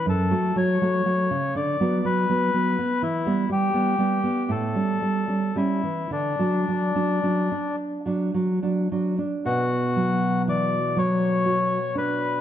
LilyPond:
<<
  \new Staff \with { instrumentName = "Bandoneon" } { \time 6/8 \key d \major \tempo 4. = 40 a'8 cis''4 d''8 b'4 | e'8 g'4 a'4 e'8 | d'4. r4. | \key b \minor fis'4 d''8 cis''4 b'8 | }
  \new Staff \with { instrumentName = "Nylon-string guitar" } { \clef bass \time 6/8 \key d \major fis,16 <fis a>16 fis16 <fis a>16 <fis a>16 cis16 d16 <fis b>16 fis16 <fis b>16 <fis b>16 b16 | e16 <g b>16 g16 <g b>16 <g b>16 b16 a,16 <g cis'>16 g16 <g cis'>16 <g cis'>16 e16 | d16 <fis d'>16 fis16 <fis d'>16 <fis d'>16 d'8 <fis d'>16 fis16 <fis d'>16 <fis d'>16 d'16 | \key b \minor b,8 fis8 e8 fis8 fis'8 d'8 | }
>>